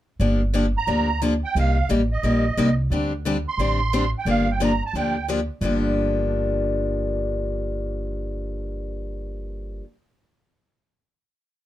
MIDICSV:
0, 0, Header, 1, 4, 480
1, 0, Start_track
1, 0, Key_signature, -2, "minor"
1, 0, Tempo, 339367
1, 284, Time_signature, 4, 2, 24, 8
1, 16482, End_track
2, 0, Start_track
2, 0, Title_t, "Accordion"
2, 0, Program_c, 0, 21
2, 1098, Note_on_c, 0, 82, 86
2, 1703, Note_off_c, 0, 82, 0
2, 2043, Note_on_c, 0, 79, 83
2, 2226, Note_off_c, 0, 79, 0
2, 2245, Note_on_c, 0, 77, 81
2, 2672, Note_off_c, 0, 77, 0
2, 3004, Note_on_c, 0, 75, 70
2, 3888, Note_off_c, 0, 75, 0
2, 4929, Note_on_c, 0, 84, 92
2, 5806, Note_off_c, 0, 84, 0
2, 5924, Note_on_c, 0, 79, 71
2, 6048, Note_off_c, 0, 79, 0
2, 6076, Note_on_c, 0, 77, 84
2, 6381, Note_off_c, 0, 77, 0
2, 6387, Note_on_c, 0, 79, 67
2, 6518, Note_off_c, 0, 79, 0
2, 6570, Note_on_c, 0, 82, 70
2, 6838, Note_off_c, 0, 82, 0
2, 6874, Note_on_c, 0, 81, 71
2, 7001, Note_off_c, 0, 81, 0
2, 7023, Note_on_c, 0, 79, 68
2, 7452, Note_off_c, 0, 79, 0
2, 16482, End_track
3, 0, Start_track
3, 0, Title_t, "Steel-string acoustic guitar"
3, 0, Program_c, 1, 25
3, 278, Note_on_c, 1, 50, 50
3, 290, Note_on_c, 1, 53, 59
3, 293, Note_on_c, 1, 58, 63
3, 293, Note_on_c, 1, 62, 59
3, 301, Note_on_c, 1, 67, 61
3, 568, Note_off_c, 1, 50, 0
3, 574, Note_off_c, 1, 53, 0
3, 575, Note_off_c, 1, 58, 0
3, 576, Note_off_c, 1, 62, 0
3, 580, Note_off_c, 1, 67, 0
3, 757, Note_on_c, 1, 50, 77
3, 763, Note_on_c, 1, 53, 72
3, 766, Note_on_c, 1, 58, 81
3, 775, Note_on_c, 1, 62, 85
3, 780, Note_on_c, 1, 67, 77
3, 913, Note_off_c, 1, 50, 0
3, 916, Note_off_c, 1, 53, 0
3, 917, Note_off_c, 1, 58, 0
3, 922, Note_off_c, 1, 62, 0
3, 924, Note_off_c, 1, 67, 0
3, 1232, Note_on_c, 1, 50, 56
3, 1237, Note_on_c, 1, 58, 60
3, 1239, Note_on_c, 1, 53, 52
3, 1243, Note_on_c, 1, 62, 59
3, 1253, Note_on_c, 1, 67, 59
3, 1525, Note_off_c, 1, 50, 0
3, 1528, Note_off_c, 1, 58, 0
3, 1529, Note_off_c, 1, 53, 0
3, 1531, Note_off_c, 1, 62, 0
3, 1536, Note_off_c, 1, 67, 0
3, 1720, Note_on_c, 1, 53, 75
3, 1722, Note_on_c, 1, 50, 69
3, 1730, Note_on_c, 1, 58, 76
3, 1732, Note_on_c, 1, 62, 85
3, 1743, Note_on_c, 1, 67, 81
3, 1875, Note_off_c, 1, 53, 0
3, 1876, Note_off_c, 1, 50, 0
3, 1879, Note_off_c, 1, 58, 0
3, 1881, Note_off_c, 1, 62, 0
3, 1886, Note_off_c, 1, 67, 0
3, 2209, Note_on_c, 1, 48, 47
3, 2212, Note_on_c, 1, 55, 55
3, 2219, Note_on_c, 1, 58, 60
3, 2221, Note_on_c, 1, 63, 63
3, 2225, Note_on_c, 1, 67, 64
3, 2493, Note_off_c, 1, 48, 0
3, 2494, Note_off_c, 1, 55, 0
3, 2498, Note_off_c, 1, 58, 0
3, 2499, Note_off_c, 1, 63, 0
3, 2501, Note_off_c, 1, 67, 0
3, 2677, Note_on_c, 1, 48, 76
3, 2683, Note_on_c, 1, 55, 83
3, 2687, Note_on_c, 1, 58, 91
3, 2696, Note_on_c, 1, 63, 81
3, 2697, Note_on_c, 1, 67, 89
3, 2832, Note_off_c, 1, 48, 0
3, 2835, Note_off_c, 1, 55, 0
3, 2837, Note_off_c, 1, 58, 0
3, 2841, Note_off_c, 1, 63, 0
3, 2842, Note_off_c, 1, 67, 0
3, 3158, Note_on_c, 1, 48, 55
3, 3168, Note_on_c, 1, 55, 62
3, 3173, Note_on_c, 1, 58, 54
3, 3178, Note_on_c, 1, 63, 62
3, 3185, Note_on_c, 1, 67, 54
3, 3446, Note_off_c, 1, 48, 0
3, 3451, Note_off_c, 1, 55, 0
3, 3454, Note_off_c, 1, 58, 0
3, 3456, Note_off_c, 1, 63, 0
3, 3459, Note_off_c, 1, 67, 0
3, 3641, Note_on_c, 1, 48, 82
3, 3649, Note_on_c, 1, 55, 79
3, 3652, Note_on_c, 1, 58, 74
3, 3657, Note_on_c, 1, 63, 90
3, 3661, Note_on_c, 1, 67, 98
3, 3793, Note_off_c, 1, 48, 0
3, 3796, Note_off_c, 1, 55, 0
3, 3798, Note_off_c, 1, 58, 0
3, 3800, Note_off_c, 1, 63, 0
3, 3803, Note_off_c, 1, 67, 0
3, 4123, Note_on_c, 1, 50, 59
3, 4126, Note_on_c, 1, 55, 56
3, 4133, Note_on_c, 1, 60, 58
3, 4140, Note_on_c, 1, 67, 61
3, 4141, Note_on_c, 1, 62, 67
3, 4407, Note_off_c, 1, 50, 0
3, 4408, Note_off_c, 1, 55, 0
3, 4412, Note_off_c, 1, 60, 0
3, 4415, Note_off_c, 1, 67, 0
3, 4416, Note_off_c, 1, 62, 0
3, 4601, Note_on_c, 1, 50, 80
3, 4610, Note_on_c, 1, 55, 86
3, 4613, Note_on_c, 1, 60, 87
3, 4616, Note_on_c, 1, 62, 85
3, 4622, Note_on_c, 1, 67, 97
3, 4750, Note_off_c, 1, 50, 0
3, 4755, Note_off_c, 1, 55, 0
3, 4756, Note_off_c, 1, 60, 0
3, 4758, Note_off_c, 1, 62, 0
3, 4761, Note_off_c, 1, 67, 0
3, 5081, Note_on_c, 1, 50, 58
3, 5084, Note_on_c, 1, 55, 55
3, 5090, Note_on_c, 1, 60, 60
3, 5092, Note_on_c, 1, 62, 68
3, 5101, Note_on_c, 1, 67, 63
3, 5363, Note_off_c, 1, 50, 0
3, 5365, Note_off_c, 1, 55, 0
3, 5368, Note_off_c, 1, 60, 0
3, 5369, Note_off_c, 1, 62, 0
3, 5373, Note_off_c, 1, 67, 0
3, 5560, Note_on_c, 1, 50, 82
3, 5562, Note_on_c, 1, 55, 74
3, 5566, Note_on_c, 1, 60, 84
3, 5572, Note_on_c, 1, 62, 80
3, 5577, Note_on_c, 1, 67, 79
3, 5708, Note_off_c, 1, 50, 0
3, 5709, Note_off_c, 1, 55, 0
3, 5710, Note_off_c, 1, 60, 0
3, 5714, Note_off_c, 1, 62, 0
3, 5716, Note_off_c, 1, 67, 0
3, 6029, Note_on_c, 1, 50, 56
3, 6031, Note_on_c, 1, 53, 58
3, 6041, Note_on_c, 1, 58, 62
3, 6041, Note_on_c, 1, 62, 59
3, 6048, Note_on_c, 1, 67, 62
3, 6315, Note_off_c, 1, 50, 0
3, 6316, Note_off_c, 1, 53, 0
3, 6321, Note_off_c, 1, 58, 0
3, 6322, Note_off_c, 1, 62, 0
3, 6324, Note_off_c, 1, 67, 0
3, 6509, Note_on_c, 1, 50, 82
3, 6516, Note_on_c, 1, 53, 84
3, 6517, Note_on_c, 1, 58, 74
3, 6527, Note_on_c, 1, 62, 83
3, 6527, Note_on_c, 1, 67, 90
3, 6660, Note_off_c, 1, 50, 0
3, 6664, Note_off_c, 1, 53, 0
3, 6664, Note_off_c, 1, 58, 0
3, 6669, Note_off_c, 1, 62, 0
3, 6669, Note_off_c, 1, 67, 0
3, 7003, Note_on_c, 1, 50, 54
3, 7009, Note_on_c, 1, 53, 60
3, 7014, Note_on_c, 1, 58, 52
3, 7020, Note_on_c, 1, 62, 64
3, 7024, Note_on_c, 1, 67, 63
3, 7281, Note_off_c, 1, 50, 0
3, 7283, Note_off_c, 1, 53, 0
3, 7286, Note_off_c, 1, 58, 0
3, 7289, Note_off_c, 1, 62, 0
3, 7291, Note_off_c, 1, 67, 0
3, 7474, Note_on_c, 1, 50, 74
3, 7482, Note_on_c, 1, 53, 79
3, 7489, Note_on_c, 1, 58, 81
3, 7490, Note_on_c, 1, 62, 82
3, 7493, Note_on_c, 1, 67, 89
3, 7621, Note_off_c, 1, 50, 0
3, 7625, Note_off_c, 1, 53, 0
3, 7629, Note_off_c, 1, 58, 0
3, 7629, Note_off_c, 1, 62, 0
3, 7631, Note_off_c, 1, 67, 0
3, 7939, Note_on_c, 1, 43, 74
3, 7952, Note_on_c, 1, 50, 65
3, 7961, Note_on_c, 1, 53, 81
3, 7975, Note_on_c, 1, 58, 75
3, 7986, Note_on_c, 1, 62, 74
3, 7991, Note_on_c, 1, 67, 69
3, 13907, Note_off_c, 1, 43, 0
3, 13913, Note_off_c, 1, 50, 0
3, 13918, Note_off_c, 1, 53, 0
3, 13925, Note_off_c, 1, 58, 0
3, 13930, Note_off_c, 1, 62, 0
3, 13933, Note_off_c, 1, 67, 0
3, 16482, End_track
4, 0, Start_track
4, 0, Title_t, "Upright bass"
4, 0, Program_c, 2, 32
4, 276, Note_on_c, 2, 31, 72
4, 1049, Note_off_c, 2, 31, 0
4, 1233, Note_on_c, 2, 38, 64
4, 2006, Note_off_c, 2, 38, 0
4, 2195, Note_on_c, 2, 36, 75
4, 2583, Note_off_c, 2, 36, 0
4, 2678, Note_on_c, 2, 33, 71
4, 3088, Note_off_c, 2, 33, 0
4, 3154, Note_on_c, 2, 34, 72
4, 3565, Note_off_c, 2, 34, 0
4, 3640, Note_on_c, 2, 36, 72
4, 4047, Note_off_c, 2, 36, 0
4, 4105, Note_on_c, 2, 38, 77
4, 4876, Note_off_c, 2, 38, 0
4, 5056, Note_on_c, 2, 33, 66
4, 5829, Note_off_c, 2, 33, 0
4, 6015, Note_on_c, 2, 31, 71
4, 6787, Note_off_c, 2, 31, 0
4, 6978, Note_on_c, 2, 38, 65
4, 7748, Note_off_c, 2, 38, 0
4, 7932, Note_on_c, 2, 31, 75
4, 13847, Note_off_c, 2, 31, 0
4, 16482, End_track
0, 0, End_of_file